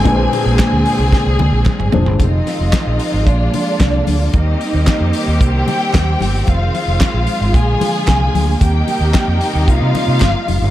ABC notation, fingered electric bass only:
X:1
M:4/4
L:1/16
Q:1/4=112
K:Fdor
V:1 name="Fingered electric bass" clef=bass
B,,,2 z B,,, z D,, z C,, z C,, D,, B,,, z G,,, F,,, G,,, | F,,,2 z F,,, z B,,, z A,,, B,,,2 z2 C,,2 D,,2 | E,,2 z E,, z F,, z E,, C,,2 z2 E,,2 G,,,2 | F,,,2 z F,,, z B,,, z A,,, B,,,2 z2 C,,2 D,,2 |
E,,2 z E,, z F,, z E,, C,, C, z C, G,,, z F,,, G,,, |]